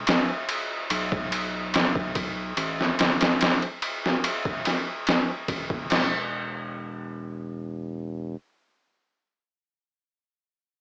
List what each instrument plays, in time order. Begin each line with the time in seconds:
0.07 snare, ride
0.49 ride
0.90 analog synth bass B1, ride
1.12 kick
1.32 ride
1.74 snare, ride
1.95 kick
2.15 kick, ride
2.57 analog synth bass A1, ride
2.80 snare
2.99 analog synth bass G1, snare, ride
3.20 analog synth bass A1, snare, ride
3.40 snare, ride
3.62 ride
3.82 ride
4.06 snare
4.24 ride
4.45 kick
4.65 snare, ride
5.07 snare, ride
5.48 analog synth bass A1, kick, ride
5.70 analog synth bass G1, kick
5.90 analog synth bass E1, snare, crash